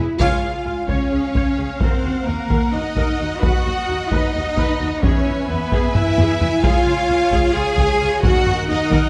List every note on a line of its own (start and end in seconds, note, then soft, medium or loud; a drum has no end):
0.00 0.16 E4 soft
0.00 0.17 E4 medium
0.17 0.41 C#2 medium
0.17 0.84 F4 medium
0.17 0.86 F4 medium
0.17 1.77 F5 medium
0.17 1.77 G#5 medium
0.17 taiko medium
0.21 0.42 C#5 medium
0.21 2.71 F5 medium
0.21 0.86 F5 medium
0.43 0.51 C#2 soft
0.43 0.52 G#4 soft
0.66 0.74 C#2 soft
0.66 0.74 F4 soft
0.86 0.96 C#2 medium
0.86 1.78 C#4 medium
0.86 1.82 C#4 medium
0.86 1.11 C#5 medium
0.86 1.82 C#5 medium
0.86 taiko medium
1.12 1.21 C#2 soft
1.12 1.20 G#4 soft
1.35 1.43 C#2 medium
1.35 1.57 C#5 medium
1.35 taiko medium
1.58 1.66 C#2 soft
1.58 1.67 G#4 soft
1.79 1.89 D#2 medium
1.79 2.27 C4 medium
1.79 2.04 A#4 medium
1.79 2.27 C5 medium
1.79 5.03 F#5 medium
1.79 taiko medium
2.03 2.11 D#2 soft
2.03 2.13 F#4 soft
2.26 2.34 D#2 soft
2.26 2.73 A#3 medium
2.26 2.74 A#3 medium
2.26 2.35 D#4 soft
2.26 2.74 A#4 medium
2.49 2.57 D#2 medium
2.49 2.73 A#4 medium
2.49 taiko medium
2.73 2.81 D#2 soft
2.73 3.43 D#4 medium
2.73 3.26 D#4 medium
2.73 2.81 F#4 soft
2.73 5.03 D#5 medium
2.73 3.44 D#5 medium
2.96 3.04 D#2 medium
2.96 3.19 A#4 medium
2.96 taiko medium
3.19 3.28 D#2 soft
3.19 3.27 F#4 soft
3.42 3.51 D#2 medium
3.42 4.11 F#4 medium
3.42 4.10 F#4 medium
3.42 3.64 B4 medium
3.42 4.10 F#5 medium
3.42 taiko medium
3.65 3.73 D#2 soft
3.65 3.73 F#4 medium
3.89 3.97 D#2 soft
3.89 3.97 D#4 soft
4.09 4.19 D#2 medium
4.09 5.02 D#4 medium
4.09 5.03 D#4 medium
4.09 4.33 B4 medium
4.09 5.04 D#5 medium
4.09 taiko medium
4.35 4.43 D#2 soft
4.35 4.43 F#4 medium
4.56 4.64 D#2 medium
4.56 4.79 B4 medium
4.56 taiko medium
4.80 4.88 D#2 soft
4.80 4.89 F#4 medium
5.02 5.11 E2 medium
5.02 5.48 C#4 medium
5.02 5.49 C#4 medium
5.02 5.24 G#4 medium
5.02 6.63 B4 medium
5.02 5.48 C#5 medium
5.02 6.61 E5 medium
5.02 8.25 G#5 medium
5.02 taiko medium
5.26 5.34 E2 soft
5.26 5.34 E4 soft
5.49 5.57 E2 medium
5.49 5.57 B3 soft
5.49 5.95 B3 medium
5.49 5.96 B3 medium
5.49 5.95 B4 medium
5.71 5.79 E2 medium
5.71 5.94 G#4 medium
5.71 taiko medium
5.95 6.03 E2 soft
5.95 6.62 E4 medium
5.95 6.63 E4 medium
5.95 6.04 E4 soft
5.95 6.64 E5 medium
5.95 taiko low-mid medium
6.17 6.25 E2 medium
6.17 6.40 G#4 medium
6.17 taiko low-mid medium
6.41 6.49 E2 soft
6.41 6.49 E4 medium
6.41 taiko low medium
6.62 6.71 C#2 medium
6.62 7.55 F4 medium
6.62 7.54 F4 loud
6.62 6.85 G#4 medium
6.62 8.21 C#5 medium
6.62 8.20 F5 medium
6.62 7.56 F5 medium
6.62 taiko medium
6.86 6.95 C#2 medium
6.86 6.94 F4 medium
7.09 7.17 C#2 medium
7.09 7.18 C#4 medium
7.32 7.40 C#2 medium
7.32 7.54 G#4 medium
7.32 taiko medium
7.54 7.63 C#2 medium
7.54 7.63 F4 medium
7.54 8.24 G#4 medium
7.54 8.24 G#4 loud
7.54 8.24 G#5 medium
7.78 7.86 C#2 medium
7.78 8.00 G#4 medium
7.78 taiko medium
8.00 8.08 C#2 medium
8.00 8.09 F4 medium
8.23 8.32 D#2 medium
8.23 8.89 D#3 medium
8.23 8.69 F#4 medium
8.23 8.91 A#4 medium
8.23 9.09 D#5 medium
8.23 9.09 F#5 medium
8.23 8.69 F#5 medium
8.23 taiko loud
8.47 8.55 D#2 medium
8.47 8.55 F#4 medium
8.47 taiko low-mid medium
8.69 8.77 D#2 medium
8.69 8.77 D#4 medium
8.69 9.09 D#4 medium
8.69 9.09 D#5 medium
8.91 8.99 D#2 medium
8.91 9.09 A#4 medium
8.91 taiko medium